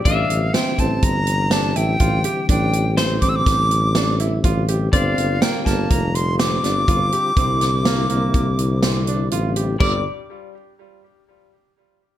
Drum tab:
CC |----------|----------|----------|----------|
HH |xxxxxxxxxx|xxxxxxxxxx|xxxxxxxxxx|xxxxxxxxxx|
SD |--o---o---|--o-o-o---|--oo--oo--|-oo---o---|
BD |o--oo---o-|o--oo---o-|o--oo---o-|o---o-----|

CC |x---------|
HH |----------|
SD |----------|
BD |o---------|